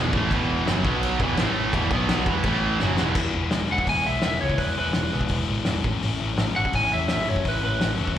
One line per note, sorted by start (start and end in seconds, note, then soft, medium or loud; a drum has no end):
0.00 0.12 E1 loud
0.00 0.13 E2 medium
0.00 0.13 B2 loud
0.00 0.13 E3 medium
0.13 0.30 A1 loud
0.13 0.31 A2 loud
0.13 0.31 E3 loud
0.13 0.32 A3 loud
0.13 kick loud
0.31 0.64 E1 loud
0.31 0.66 E2 medium
0.31 0.66 B2 medium
0.31 0.66 E3 loud
0.31 kick loud
0.31 crash medium
0.66 0.84 F#1 loud
0.66 0.84 F#2 loud
0.66 0.84 C#3 loud
0.66 0.84 F#3 loud
0.66 snare loud
0.66 crash medium
0.85 1.18 B1 loud
0.85 1.20 B2 medium
0.85 1.20 F#3 loud
0.85 1.20 B3 loud
0.85 kick loud
1.03 crash medium
1.20 1.36 E1 loud
1.20 1.38 E2 medium
1.20 1.38 B2 medium
1.20 1.38 E3 loud
1.20 kick loud
1.37 1.73 A2 medium
1.37 1.73 E3 loud
1.37 1.74 A3 loud
1.37 snare loud
1.37 crash medium
1.42 1.73 A1 loud
1.73 1.90 E1 loud
1.73 1.91 E2 medium
1.73 1.90 B2 medium
1.73 1.91 E3 loud
1.73 kick loud
1.73 crash medium
1.91 2.24 B1 medium
1.91 2.26 B2 loud
1.91 2.27 F#3 loud
1.91 2.27 B3 loud
1.91 kick loud
2.09 snare loud
2.09 crash medium
2.26 2.43 E1 loud
2.26 2.45 E2 loud
2.26 2.44 B2 loud
2.26 2.45 E3 loud
2.26 kick loud
2.43 2.78 A1 medium
2.43 2.80 A2 medium
2.43 2.81 E3 loud
2.43 2.80 A3 loud
2.43 kick loud
2.43 crash medium
2.80 2.98 F#1 loud
2.80 2.98 F#2 medium
2.80 2.99 C#3 loud
2.80 2.99 F#3 loud
2.80 snare medium
2.97 3.15 E1 loud
2.97 3.16 E2 loud
2.97 3.16 B2 medium
2.97 3.15 E3 loud
2.97 snare loud
3.15 3.27 E1 medium
3.15 3.34 E3 medium
3.15 3.35 G#3 medium
3.15 3.35 B3 medium
3.15 3.35 E4 medium
3.15 kick loud
3.15 crash loud
3.34 3.46 E1 medium
3.34 3.51 E3 medium
3.34 3.51 G#3 medium
3.34 3.52 B3 medium
3.34 3.52 E4 medium
3.51 3.65 E1 medium
3.51 3.69 E3 medium
3.51 3.69 G#3 medium
3.51 3.70 B3 medium
3.51 3.71 E4 medium
3.51 snare loud
3.51 open hi-hat medium
3.70 3.82 E1 medium
3.70 3.87 E3 medium
3.70 3.87 G#3 medium
3.70 3.88 B3 loud
3.70 3.89 E4 loud
3.70 3.88 F#5 medium
3.78 kick medium
3.87 3.99 E1 loud
3.87 4.05 E3 medium
3.87 4.05 G#3 medium
3.87 4.05 B3 medium
3.87 4.06 E4 medium
3.87 4.07 G#5 loud
3.87 kick loud
3.87 open hi-hat medium
4.06 4.18 B1 medium
4.06 4.23 E3 medium
4.06 4.23 G#3 medium
4.06 4.23 B3 medium
4.06 4.25 E4 medium
4.06 4.24 E5 medium
4.22 4.41 E3 medium
4.22 4.40 G#3 medium
4.22 4.41 B3 loud
4.22 4.42 E4 medium
4.22 4.41 E5 loud
4.22 snare loud
4.22 open hi-hat medium
4.26 4.36 E1 medium
4.41 4.53 C#2 medium
4.41 4.59 E3 medium
4.41 4.58 G#3 medium
4.41 4.59 B3 medium
4.41 4.60 E4 medium
4.41 4.60 C#5 medium
4.50 kick medium
4.58 4.70 E1 loud
4.58 4.76 E3 medium
4.58 4.76 G#3 medium
4.58 4.76 B3 medium
4.58 4.77 E4 medium
4.58 4.77 B4 medium
4.58 kick medium
4.58 open hi-hat medium
4.77 4.89 E1 medium
4.77 4.93 E3 medium
4.77 4.93 G#3 medium
4.77 4.93 B3 medium
4.77 4.95 E4 medium
4.77 5.28 B4 medium
4.93 5.07 E1 medium
4.93 5.11 E3 medium
4.93 5.11 G#3 loud
4.93 5.12 B3 medium
4.93 5.13 E4 medium
4.93 snare loud
4.93 open hi-hat medium
5.11 5.25 B1 medium
5.11 5.29 E3 medium
5.11 5.29 G#3 medium
5.11 5.29 B3 loud
5.11 5.31 E4 medium
5.21 kick medium
5.28 5.41 E1 loud
5.28 5.49 E3 medium
5.28 5.48 G#3 loud
5.28 5.48 B3 loud
5.28 5.50 E4 medium
5.28 kick loud
5.28 open hi-hat medium
5.49 5.61 A1 medium
5.49 5.67 E3 medium
5.49 5.66 G#3 medium
5.49 5.67 B3 medium
5.49 5.68 E4 medium
5.65 5.79 E1 medium
5.65 5.85 E3 medium
5.65 5.84 G#3 medium
5.65 5.84 B3 medium
5.65 5.86 E4 loud
5.65 snare medium
5.65 open hi-hat medium
5.84 5.96 A1 medium
5.84 6.02 A2 medium
5.84 6.02 E3 loud
5.84 6.03 A3 loud
5.84 6.03 C#4 loud
5.84 6.04 E4 loud
5.84 kick loud
6.02 6.15 A1 loud
6.02 6.19 A2 medium
6.02 6.21 E3 medium
6.02 6.21 A3 medium
6.02 6.21 C#4 medium
6.02 6.21 E4 loud
6.02 open hi-hat medium
6.20 6.31 A1 medium
6.20 6.37 A2 medium
6.20 6.37 E3 medium
6.20 6.38 A3 medium
6.20 6.38 C#4 medium
6.20 6.39 E4 medium
6.37 6.49 A1 loud
6.37 6.54 A2 medium
6.37 6.55 E3 medium
6.37 6.56 A3 medium
6.37 6.56 C#4 medium
6.37 6.56 E4 medium
6.37 snare loud
6.37 open hi-hat soft
6.54 6.69 A1 medium
6.54 6.71 A2 medium
6.54 6.72 E3 loud
6.54 6.72 A3 medium
6.54 6.73 C#4 loud
6.54 6.74 E4 loud
6.54 6.73 F#5 loud
6.65 kick medium
6.73 6.85 A1 loud
6.73 6.89 A2 medium
6.73 6.89 E3 medium
6.73 6.89 A3 medium
6.73 6.89 C#4 loud
6.73 6.91 E4 medium
6.73 6.93 G#5 loud
6.73 kick loud
6.73 open hi-hat medium
6.90 7.07 A2 medium
6.90 7.09 E3 medium
6.90 7.08 A3 medium
6.90 7.09 C#4 medium
6.90 7.10 E4 medium
6.90 7.09 E5 medium
6.94 7.04 E2 medium
7.08 7.22 A1 medium
7.08 7.26 A2 medium
7.08 7.27 E3 medium
7.08 7.27 A3 medium
7.08 7.27 C#4 medium
7.08 7.29 E4 medium
7.08 7.29 E5 medium
7.08 snare loud
7.08 open hi-hat medium
7.28 7.40 F#2 medium
7.28 7.43 A2 medium
7.28 7.45 E3 medium
7.28 7.44 A3 medium
7.28 7.45 C#4 loud
7.28 7.46 E4 loud
7.28 7.47 C#5 medium
7.36 kick medium
7.44 7.57 A1 medium
7.44 7.61 A2 medium
7.44 7.62 E3 medium
7.44 7.62 A3 medium
7.44 7.62 C#4 medium
7.44 7.63 E4 medium
7.44 kick medium
7.44 open hi-hat medium
7.49 7.63 B4 loud
7.62 7.78 A2 medium
7.62 7.80 E3 medium
7.62 7.80 A3 medium
7.62 7.80 C#4 medium
7.62 7.82 E4 medium
7.62 8.14 B4 medium
7.66 7.77 A1 medium
7.79 7.94 A1 medium
7.79 7.95 A2 medium
7.79 7.98 E3 medium
7.79 7.97 A3 medium
7.79 7.97 C#4 medium
7.79 7.98 E4 medium
7.79 snare loud
7.79 open hi-hat medium
7.97 8.15 A2 medium
7.97 8.16 E3 loud
7.97 8.15 A3 medium
7.97 8.16 C#4 loud
7.97 8.17 E4 loud
8.01 8.11 E1 medium
8.07 kick medium